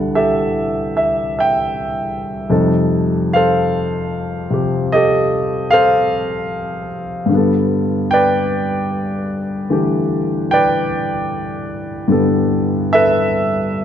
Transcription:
0.00 2.49 C2 soft
0.00 2.48 C3 soft
0.00 2.50 D3 soft
0.00 2.51 E3 soft
0.00 2.49 G3 soft
0.00 2.51 D4 soft
0.00 2.51 E4 soft
0.00 0.17 A4 medium
0.00 2.52 F#5 medium
0.15 2.49 G4 soft
0.15 2.49 A4 soft
0.15 0.95 E5 medium
0.97 1.31 E5 medium
1.39 2.50 E5 soft
1.39 2.31 G5 medium
2.50 7.29 F2 soft
2.50 4.49 C3 soft
2.50 7.30 G3 soft
2.50 7.30 D#4 soft
2.50 3.34 A4 soft
3.33 4.94 A4 medium
3.33 5.68 C5 medium
3.33 4.47 F5 medium
4.50 7.30 C3 soft
4.50 7.30 F3 soft
4.50 7.30 C4 soft
4.50 4.93 G4 soft
4.92 7.28 G4 medium
4.92 5.71 A4 medium
4.92 5.73 D#5 medium
5.71 7.27 A4 medium
5.71 7.28 C5 medium
5.71 6.86 F5 medium
7.26 12.06 G2 soft
7.26 9.68 D3 soft
7.32 12.08 G3 soft
7.32 12.10 B3 soft
7.37 12.10 A4 soft
8.11 10.46 B4 medium
8.11 10.47 D5 medium
8.11 9.26 G5 medium
9.70 12.07 D3 soft
9.70 12.10 E3 soft
9.70 12.11 A3 soft
9.70 12.11 G4 soft
10.51 12.87 B4 medium
10.51 12.87 D5 medium
10.51 11.66 G5 medium
12.08 13.85 G2 soft
12.08 13.85 D3 soft
12.08 13.85 G3 soft
12.08 13.85 B3 soft
12.12 12.93 A4 soft
12.93 13.85 A4 medium
12.93 13.85 B4 medium
12.93 13.85 E5 medium

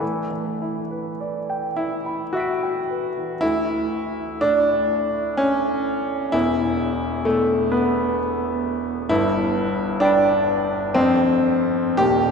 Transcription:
0.00 3.38 A2 soft
0.00 0.29 E3 medium
0.31 0.79 E3 soft
0.62 1.09 E4 soft
0.91 1.38 B4 soft
1.21 1.66 D5 soft
1.50 1.95 G5 soft
1.76 2.33 E4 medium
1.76 2.23 E5 soft
2.06 2.51 B5 soft
2.33 3.42 F#4 medium
2.33 2.79 E5 soft
2.33 3.38 E6 soft
2.37 3.40 B6 soft
2.37 3.41 D7 soft
2.62 3.07 G5 soft
2.91 3.33 B4 soft
3.17 3.42 E3 soft
3.41 6.29 D2 medium
3.41 4.41 E4 loud
4.41 6.34 A2 medium
4.41 5.38 D4 loud
5.37 6.33 C#4 loud
6.32 9.06 E1 medium
6.32 9.06 E2 medium
6.32 7.26 E4 loud
7.25 9.10 B2 medium
7.25 7.72 A3 medium
7.72 8.18 B3 medium
9.09 10.91 G1 medium
9.09 10.92 G2 medium
9.09 10.02 E4 loud
10.00 10.95 D4 loud
10.00 10.91 G5 medium
10.00 10.92 B5 medium
10.00 10.91 A6 soft
10.05 10.93 D7 soft
10.94 11.95 F2 medium
10.94 11.98 C4 loud
10.94 11.94 G5 medium
10.94 11.94 C6 medium
11.97 12.31 D#1 medium
11.97 12.31 D#2 medium
11.97 12.31 G4 loud

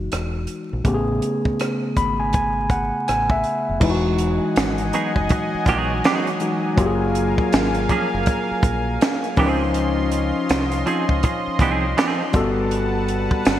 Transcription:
0.00 0.44 E3 medium
0.00 0.44 G#3 medium
0.00 0.45 D#4 medium
0.00 0.46 F#4 medium
0.12 0.45 E1 medium
0.12 cross-stick medium
0.12 closed hi-hat medium
0.47 closed hi-hat medium
0.73 0.85 A#1 medium
0.84 1.19 A1 medium
0.84 3.77 C#3 medium
0.84 3.78 A3 medium
0.84 3.78 B3 medium
0.84 0.95 G4 medium
0.84 kick medium
0.84 closed hi-hat medium
0.94 3.82 G#4 medium
1.22 closed hi-hat medium
1.45 kick medium
1.59 cross-stick loud
1.59 closed hi-hat medium
1.97 2.90 G#1 medium
1.97 2.18 B5 medium
1.97 kick medium
1.97 closed hi-hat medium
2.20 2.33 G#5 medium
2.33 2.68 G#5 medium
2.33 kick medium
2.33 closed hi-hat medium
2.70 3.05 F#5 medium
2.70 kick medium
2.70 closed hi-hat soft
3.08 3.42 A1 medium
3.08 3.29 G#5 medium
3.08 cross-stick medium
3.08 closed hi-hat medium
3.30 3.78 E5 medium
3.30 kick medium
3.44 closed hi-hat soft
3.69 3.81 F1 medium
3.80 4.38 E1 loud
3.80 6.36 E3 medium
3.80 9.33 F#3 medium
3.80 6.37 G#3 medium
3.80 6.37 D#4 medium
3.80 3.91 E4 medium
3.80 6.75 D#5 medium
3.80 6.75 F#5 medium
3.80 6.75 G#5 medium
3.80 kick loud
3.80 crash medium
3.90 6.40 F#4 medium
4.18 closed hi-hat medium
4.56 4.90 G#1 medium
4.56 finger snap medium
4.56 snare loud
4.56 closed hi-hat medium
4.78 closed hi-hat soft
4.93 5.11 F#3 medium
4.93 5.11 B3 medium
4.93 5.11 D#4 medium
4.93 5.12 G#4 medium
4.93 closed hi-hat medium
5.16 5.29 F#1 medium
5.16 kick medium
5.29 muted clean electric guitar stroke soft
5.29 kick loud
5.29 closed hi-hat medium
5.54 muted fingered electric bass stroke soft
5.66 6.00 A#1 medium
5.66 5.92 F#3 medium
5.66 5.92 B3 medium
5.66 5.92 D#4 medium
5.66 5.92 G#4 medium
5.66 kick loud
5.66 closed hi-hat medium
6.04 6.29 F#3 medium
6.04 6.29 B3 medium
6.04 6.29 D#4 medium
6.04 6.29 G#4 medium
6.04 finger snap medium
6.04 snare loud
6.04 closed hi-hat medium
6.27 closed hi-hat soft
6.40 6.78 E3 soft
6.40 6.78 G#3 soft
6.40 6.78 D#4 soft
6.40 6.78 F#4 medium
6.40 closed hi-hat medium
6.76 7.34 F#1 loud
6.76 9.32 F#3 medium
6.76 9.33 A#3 medium
6.76 9.33 F4 medium
6.76 6.87 G4 medium
6.76 9.35 A#4 medium
6.76 9.35 F5 medium
6.76 9.35 G#5 loud
6.76 kick loud
6.76 closed hi-hat medium
6.86 9.37 G#4 medium
7.15 closed hi-hat medium
7.38 kick medium
7.53 7.86 G#1 medium
7.53 finger snap medium
7.53 snare loud
7.53 closed hi-hat medium
7.75 closed hi-hat soft
7.89 8.08 F3 medium
7.89 8.08 A#3 medium
7.89 8.08 C#4 medium
7.89 8.08 G#4 medium
7.89 kick medium
7.89 closed hi-hat medium
8.14 8.26 F#1 medium
8.26 kick medium
8.26 closed hi-hat medium
8.51 muted fingered electric bass stroke soft
8.63 8.97 A#1 medium
8.63 kick loud
8.63 closed hi-hat medium
9.01 finger snap medium
9.01 muted clean electric guitar stroke soft
9.01 snare loud
9.01 closed hi-hat medium
9.24 closed hi-hat soft
9.36 10.31 C#2 medium
9.36 12.29 F3 medium
9.36 9.62 F3 medium
9.36 9.62 C4 medium
9.36 12.30 C#4 medium
9.36 12.30 D#4 medium
9.36 9.63 D#4 medium
9.36 12.30 F4 medium
9.36 9.63 G#4 medium
9.36 9.47 A#4 medium
9.36 12.30 D#5 medium
9.36 12.30 C6 medium
9.36 kick loud
9.36 open hi-hat soft
9.46 12.34 C5 medium
9.74 closed hi-hat medium
10.11 closed hi-hat medium
10.49 10.83 C2 loud
10.49 finger snap medium
10.49 snare loud
10.49 closed hi-hat medium
10.72 closed hi-hat soft
10.86 11.04 F3 medium
10.86 11.04 C4 medium
10.86 11.04 D#4 medium
10.86 11.04 G#4 medium
10.86 closed hi-hat medium
11.09 11.22 C#2 medium
11.09 kick medium
11.23 muted clean electric guitar stroke soft
11.23 kick loud
11.23 closed hi-hat medium
11.47 muted fingered electric bass stroke soft
11.59 11.93 C2 medium
11.59 11.84 F3 medium
11.59 11.85 C4 medium
11.59 11.85 D#4 medium
11.59 11.85 G#4 loud
11.59 kick loud
11.59 closed hi-hat medium
11.97 12.21 F3 medium
11.97 12.21 C4 medium
11.97 12.22 D#4 medium
11.97 12.22 G#4 medium
11.97 finger snap medium
11.97 snare loud
11.97 closed hi-hat medium
12.32 13.27 G1 loud
12.32 13.59 G3 medium
12.32 13.59 B3 medium
12.32 13.59 F#4 medium
12.32 13.59 A4 medium
12.32 13.59 B4 medium
12.32 13.59 F#5 medium
12.32 13.59 A5 medium
12.32 kick loud
12.32 closed hi-hat medium
12.71 closed hi-hat medium
13.09 closed hi-hat medium
13.31 kick medium
13.45 13.59 G1 medium
13.45 finger snap medium
13.45 snare loud
13.45 closed hi-hat medium

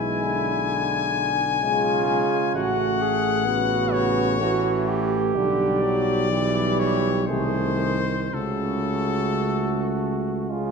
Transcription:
0.00 2.23 B1 medium
0.00 0.25 E3 medium
0.00 1.33 G#3 medium
0.00 1.33 E4 medium
0.00 2.51 G#5 loud
0.23 1.64 D3 medium
1.62 3.21 C#3 loud
1.62 2.05 G#3 loud
1.62 2.57 F4 medium
2.07 2.56 G#3 loud
2.54 5.31 A1 loud
2.54 3.47 A3 medium
2.54 3.03 F#4 loud
2.54 3.94 F#5 loud
3.02 3.48 G#4 medium
3.45 4.43 C#3 loud
3.45 4.42 B3 loud
3.45 4.39 F#4 loud
3.92 5.07 C#5 loud
4.40 5.38 E3 loud
4.40 5.37 A3 medium
4.40 4.90 F#4 loud
4.88 6.31 G4 loud
5.35 7.31 B1 loud
5.35 5.85 D3 loud
5.35 6.29 G3 medium
5.35 6.81 D5 loud
5.83 6.32 F#3 loud
6.30 7.32 E3 loud
6.30 7.30 G3 loud
6.30 7.27 G4 medium
6.79 7.26 C#5 loud
7.27 8.32 C2 loud
7.27 8.34 D#3 medium
7.27 8.03 A3 medium
7.27 8.01 G#4 medium
7.27 8.35 C5 loud
8.32 10.71 C#2 medium
8.32 10.15 C#3 medium
8.32 10.51 A3 medium
8.32 10.51 F#4 medium
8.32 10.50 A4 loud
10.49 10.71 C#3 medium
10.49 10.71 G#3 medium
10.49 10.71 F4 medium

